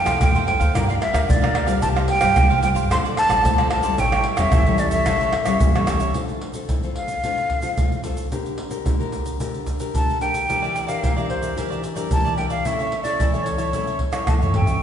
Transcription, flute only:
0.00 0.21 G5 loud
0.22 0.46 G5 medium
0.47 0.85 G5 medium
0.89 0.95 F5 medium
1.01 1.27 E5 medium
1.29 1.67 D5 medium
1.82 1.88 A5 loud
2.09 2.60 G5 loud
2.63 2.70 G5 loud
2.92 2.98 C6 loud
3.18 3.68 A5 loud
3.71 4.01 A5 loud
4.00 4.26 G5 loud
4.38 4.81 E5 loud
4.79 4.91 D5 medium
4.92 5.83 E5 medium
6.95 8.00 F5 medium
9.95 10.20 A5 medium
10.21 10.90 G5 medium
10.89 11.29 F5 medium
11.30 11.80 C5 medium
12.12 12.36 A5 medium
12.37 12.49 G5 medium
12.50 12.67 F5 medium
12.66 13.02 E5 medium
13.03 13.45 D5 medium
13.44 14.26 C#5 medium
14.28 14.34 A5 medium
14.54 14.83 G5 medium

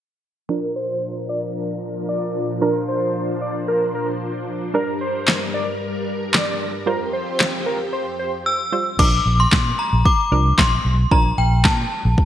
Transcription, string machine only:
0.49 4.70 A#2 medium
0.49 4.70 F3 medium
0.49 6.83 D4 medium
0.49 2.60 A#4 medium
2.62 4.72 C5 medium
4.74 6.85 G2 medium
4.74 6.84 G3 medium
4.74 6.84 A#4 medium
6.87 8.97 F2 medium
6.87 8.97 F3 medium
6.87 8.97 C4 medium
6.87 8.97 G4 medium

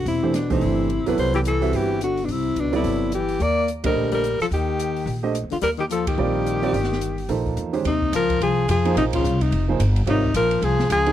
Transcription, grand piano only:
0.23 0.33 E3 medium
0.23 0.33 A3 medium
0.23 0.33 D4 medium
0.23 0.33 G4 medium
0.23 0.33 C5 medium
0.50 0.87 E3 medium
0.50 0.87 A3 medium
0.50 0.87 D4 medium
0.50 0.87 G4 medium
0.50 0.88 C5 medium
1.06 1.43 F#3 medium
1.06 1.43 B3 medium
1.06 1.43 E4 medium
1.06 1.44 A4 medium
1.06 1.44 B4 medium
1.61 1.98 G3 medium
1.61 1.99 C4 medium
1.61 1.99 F#4 medium
1.61 1.99 B4 medium
1.61 1.99 E5 medium
2.72 3.10 F#3 medium
2.72 3.10 B3 medium
2.72 3.10 E4 medium
2.72 3.10 A4 medium
2.72 3.10 D5 medium
3.83 4.21 D3 medium
3.83 4.21 A3 medium
3.83 4.21 G4 medium
3.83 4.22 C5 medium
3.83 4.22 D#5 medium
5.23 5.33 A3 medium
5.23 5.34 D4 medium
5.23 5.34 G4 medium
5.23 5.34 C5 medium
5.23 5.34 D#5 medium
6.18 6.59 G3 medium
6.18 6.59 C4 medium
6.18 6.60 F4 medium
6.18 6.60 A#4 medium
6.18 6.60 D5 medium
6.62 6.73 G3 medium
6.62 6.73 C4 medium
6.62 6.73 F4 medium
6.62 6.73 A#4 medium
6.62 6.73 D5 medium
7.29 7.70 F3 medium
7.29 7.70 A#3 medium
7.29 7.71 D#4 medium
7.29 7.71 A4 medium
7.29 7.71 C5 medium
7.73 7.84 D#3 medium
7.73 7.84 G#3 medium
7.73 7.84 C#4 medium
7.73 7.84 G4 medium
7.73 7.84 C5 medium
8.85 9.22 F3 medium
8.85 9.22 A#3 medium
8.85 9.22 D#4 medium
8.85 9.22 G#4 medium
8.85 9.23 C5 medium
9.68 9.79 F3 medium
9.68 9.79 A#3 medium
9.68 9.79 D#4 medium
9.68 9.79 G#4 medium
9.68 9.79 C5 medium
10.06 10.22 G3 medium
10.06 10.22 C4 medium
10.06 10.22 F4 medium
10.06 10.22 A#4 medium
10.06 10.22 C#5 medium
11.07 11.12 D#3 medium
11.07 11.12 G#3 medium
11.07 11.12 C#4 medium
11.07 11.12 G4 medium
11.07 11.12 A#4 medium

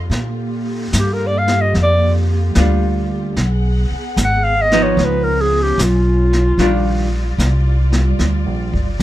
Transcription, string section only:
0.10 3.34 D3 medium
0.10 3.34 A#3 medium
0.10 3.33 F4 medium
0.10 3.34 G4 medium
3.36 6.54 B3 medium
3.36 4.96 G#4 medium
3.36 4.96 F#5 medium
4.96 6.56 C#4 medium
4.96 9.03 F4 medium
6.57 9.03 G3 medium
6.57 9.03 D5 medium

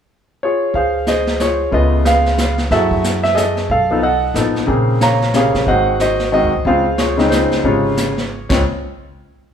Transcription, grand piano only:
0.43 0.92 F4 medium
0.43 0.75 G#4 soft
0.43 0.73 C#5 medium
0.75 1.07 G#4 medium
0.75 1.08 C5 medium
0.75 1.05 F5 medium
1.08 1.40 G#4 medium
1.08 1.58 C5 medium
1.08 1.41 D#5 medium
1.41 1.71 F4 soft
1.41 1.71 G#4 soft
1.41 1.71 C#5 medium
1.71 2.63 C#3 medium
1.71 2.63 A3 medium
1.71 2.64 B3 medium
1.71 2.64 F4 medium
1.71 2.04 G#4 medium
1.71 2.04 B4 soft
1.71 2.07 D#5 medium
2.05 2.55 G#4 medium
2.05 2.55 B4 medium
2.05 2.56 F5 medium
2.71 3.63 F#3 medium
2.71 3.63 A3 medium
2.71 3.63 E4 medium
2.71 3.63 F#4 medium
2.71 3.21 G#4 medium
2.71 3.21 A4 medium
2.71 3.02 E5 medium
3.23 3.36 E5 medium
3.35 3.66 G#4 medium
3.35 3.67 A4 medium
3.35 3.67 D#5 medium
3.71 3.91 A4 medium
3.71 4.01 F5 medium
3.91 4.02 F3 medium
3.91 4.02 B3 medium
3.91 4.02 D#4 soft
3.91 4.02 A4 medium
4.03 4.36 A4 medium
4.03 4.52 D#5 medium
4.03 4.34 F#5 medium
4.35 4.68 F3 medium
4.35 4.68 B3 soft
4.35 4.69 D#4 medium
4.35 4.69 A4 medium
4.67 5.17 C#3 medium
4.67 5.17 A#3 medium
4.67 5.17 C4 medium
4.67 5.17 G#4 medium
5.02 5.34 C#5 medium
5.02 5.34 F5 medium
5.02 5.32 A#5 medium
5.34 5.67 C3 medium
5.34 5.67 C#3 medium
5.34 5.67 A#3 medium
5.34 5.68 G#4 medium
5.34 5.65 C#5 medium
5.34 5.69 F5 medium
5.68 6.16 D#3 medium
5.68 6.16 G#3 soft
5.68 6.17 C4 soft
5.68 6.01 F#4 medium
5.68 6.00 C5 medium
5.68 6.00 D#5 medium
5.68 5.98 F#5 medium
6.01 6.33 F#4 medium
6.01 6.33 C5 medium
6.01 6.31 D#5 medium
6.32 6.51 D#3 medium
6.32 6.51 G#3 medium
6.32 6.51 C4 medium
6.32 6.52 F#4 medium
6.32 6.64 C5 medium
6.32 6.67 D#5 medium
6.66 6.84 C#3 medium
6.66 6.84 G#3 medium
6.66 6.84 C4 medium
6.66 6.85 F4 medium
6.66 6.98 G#4 medium
6.66 7.16 C5 medium
6.66 7.00 F5 medium
6.98 7.30 F4 medium
6.98 7.31 G#4 medium
6.98 7.32 C#5 medium
7.17 7.61 C#3 medium
7.17 7.61 G#3 medium
7.17 7.61 C4 medium
7.17 7.62 D#4 medium
7.30 7.65 F4 medium
7.30 7.65 G#4 soft
7.30 7.61 C5 medium
7.64 8.14 C3 medium
7.64 8.13 C#3 medium
7.64 8.13 G#3 medium
7.64 8.14 F4 medium
7.64 8.47 G#4 soft
7.64 8.46 C#5 medium
8.49 8.61 C#3 medium
8.49 8.62 G#3 medium
8.49 8.62 C4 medium
8.49 8.62 F4 medium
8.49 8.61 C#5 medium

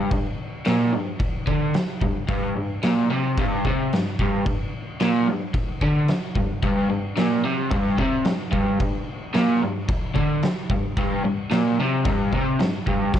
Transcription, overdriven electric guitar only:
0.00 0.11 G2 medium
0.12 0.34 G2 medium
0.66 0.92 A#2 medium
0.93 1.15 G2 medium
1.20 muted overdriven electric guitar stroke medium
1.47 1.73 D3 medium
1.75 muted overdriven electric guitar stroke medium
2.02 2.23 G2 medium
2.28 2.55 G2 loud
2.57 2.78 G2 medium
2.84 3.10 A#2 medium
3.11 3.37 C3 loud
3.38 3.64 G2 loud
3.65 3.91 C3 medium
3.94 4.14 G2 medium
4.21 4.45 G2 loud
4.46 4.68 G2 medium
5.01 5.27 A#2 loud
5.28 5.49 G2 medium
5.55 muted overdriven electric guitar stroke medium
5.83 6.08 D3 loud
6.09 muted overdriven electric guitar stroke medium
6.36 6.58 G2 medium
6.63 6.89 G2 loud
6.90 7.12 G2 medium
7.17 7.43 A#2 medium
7.44 7.71 C3 loud
7.71 7.97 G2 loud
7.98 8.25 C3 loud
8.26 8.48 G2 medium
8.51 8.79 G2 loud
8.80 9.02 G2 medium
9.34 9.61 A#2 loud
9.62 9.84 G2 medium
9.89 muted overdriven electric guitar stroke medium
10.15 10.42 D3 loud
10.43 muted overdriven electric guitar stroke medium
10.71 10.93 G2 medium
10.98 11.24 G2 loud
11.25 11.47 G2 medium
11.51 11.78 A#2 medium
11.80 12.06 C3 loud
12.05 12.32 G2 loud
12.33 12.59 C3 loud
12.59 12.82 G2 medium
12.87 13.13 G2 loud
13.14 13.20 G2 medium

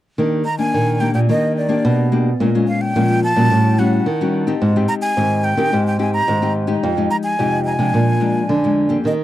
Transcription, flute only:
0.45 0.58 A#5 medium
0.59 1.02 G#5 loud
1.00 1.13 G5 medium
1.14 1.20 G5 medium
1.30 1.56 D#5 medium
1.57 2.09 D5 medium
2.68 2.83 F5 medium
2.81 3.23 G5 loud
3.24 3.80 A5 loud
3.79 4.34 F#5 medium
4.88 4.94 A#5 medium
5.02 5.46 G#5 loud
5.44 5.86 G5 loud
5.87 6.00 G5 medium
6.00 6.13 G#5 medium
6.14 6.53 A#5 medium
7.11 7.17 A#5 medium
7.24 7.63 G#5 medium
7.65 8.72 G#5 medium
9.07 9.13 D#5 medium

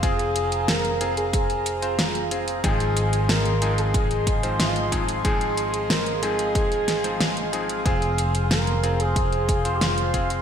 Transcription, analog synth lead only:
0.03 0.70 G#4 loud
0.68 1.17 A#4 loud
1.17 1.25 G#4 medium
1.34 1.95 G#4 loud
1.99 2.44 F4 loud
2.64 3.31 G#4 loud
3.29 3.80 A#4 loud
3.78 3.94 G#4 medium
3.94 4.56 G#4 loud
4.60 5.05 F4 medium
5.25 5.92 G#4 loud
5.90 6.24 A#4 loud
6.23 6.55 G#4 medium
6.55 7.49 G#4 medium
7.86 8.47 G#4 loud
8.51 9.01 A#4 medium
9.00 9.15 G#4 medium
9.16 9.76 G#4 loud
9.74 9.83 G4 medium
9.81 10.30 F4 medium

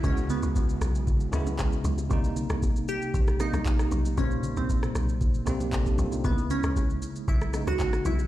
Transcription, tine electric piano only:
0.00 0.02 C#3 medium
0.00 0.86 C#3 medium
0.00 0.04 G#3 medium
0.00 0.87 G#3 medium
0.00 0.05 B3 medium
0.00 0.06 E4 medium
0.05 0.87 B3 medium
0.05 0.11 E4 medium
0.12 0.91 F#4 medium
1.32 1.95 C#3 loud
1.32 1.96 G#3 medium
1.32 1.96 B3 medium
1.32 1.97 E4 loud
2.09 2.93 C3 medium
2.09 2.94 G3 medium
2.09 2.94 A#3 medium
2.09 2.95 D#4 loud
3.39 4.02 C3 medium
3.39 4.02 G3 medium
3.39 4.03 A#3 medium
3.39 4.04 D#4 medium
4.16 5.00 A#2 medium
4.16 5.01 G3 medium
4.16 5.01 A#3 medium
4.16 5.02 C5 medium
5.46 6.09 C3 medium
5.46 6.09 G3 medium
5.46 5.73 A#3 medium
5.46 5.74 C4 loud
5.73 5.86 D#4 medium
5.73 5.86 A4 medium
5.87 5.99 D4 medium
5.87 5.98 G4 medium
5.99 6.12 C4 medium
5.99 6.12 F4 medium
6.13 6.37 A#3 medium
6.13 6.37 D#4 medium
6.23 7.07 C#3 medium
6.23 7.07 G#3 medium
6.23 7.08 B3 medium
6.23 7.09 E4 medium
7.53 8.16 C#3 medium
7.53 8.16 G#3 medium
7.53 8.17 B3 medium
7.53 8.17 D#4 medium

